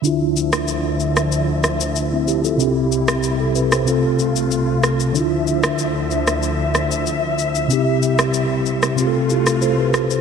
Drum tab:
SH |x-xxx-xxx-xxx-xx|x-xxx-xxx-xxx-xx|x-xxx-xxx-xxx-xx|x-xxx-xxx-xxx-xx|
SD |---r---r--r-----|---r---r------r-|---r---r--r-----|---r---r---r--r-|